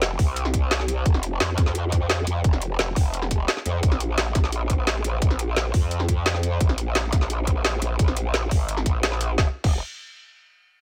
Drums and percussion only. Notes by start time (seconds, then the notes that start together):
0.02 snare, closed hi-hat
0.19 kick, open hi-hat
0.36 closed hi-hat
0.45 snare
0.54 kick, closed hi-hat
0.71 snare, closed hi-hat
0.80 snare
0.88 closed hi-hat
1.06 kick, closed hi-hat
1.14 snare
1.23 closed hi-hat
1.40 snare, closed hi-hat
1.58 kick, snare, closed hi-hat
1.66 snare
1.75 closed hi-hat
1.92 kick, closed hi-hat
2.10 snare, closed hi-hat
2.27 closed hi-hat
2.44 kick, closed hi-hat
2.53 snare
2.62 closed hi-hat
2.79 snare, closed hi-hat
2.96 kick, open hi-hat
3.14 closed hi-hat
3.22 snare
3.31 kick, closed hi-hat
3.48 snare, closed hi-hat
3.57 snare
3.66 closed hi-hat
3.83 kick, closed hi-hat
3.92 snare
4.00 closed hi-hat
4.18 snare, closed hi-hat
4.35 kick, snare, closed hi-hat
4.44 snare
4.52 closed hi-hat
4.70 kick, closed hi-hat
4.87 snare, closed hi-hat
5.04 closed hi-hat
5.22 kick, closed hi-hat
5.30 snare
5.39 closed hi-hat
5.56 snare, closed hi-hat
5.74 kick, open hi-hat
5.91 closed hi-hat
6.00 snare
6.09 kick, closed hi-hat
6.26 snare, closed hi-hat
6.35 snare
6.43 closed hi-hat
6.61 kick, closed hi-hat
6.69 snare
6.78 closed hi-hat
6.95 snare, closed hi-hat
7.13 kick, snare, closed hi-hat
7.21 snare
7.30 closed hi-hat
7.47 kick, closed hi-hat
7.65 snare, closed hi-hat
7.82 closed hi-hat
7.99 kick, closed hi-hat
8.08 snare
8.17 closed hi-hat
8.34 snare, closed hi-hat
8.51 kick, open hi-hat
8.69 closed hi-hat
8.77 snare
8.86 kick, closed hi-hat
9.03 snare, closed hi-hat
9.12 snare
9.21 closed hi-hat
9.38 kick, snare
9.64 kick, crash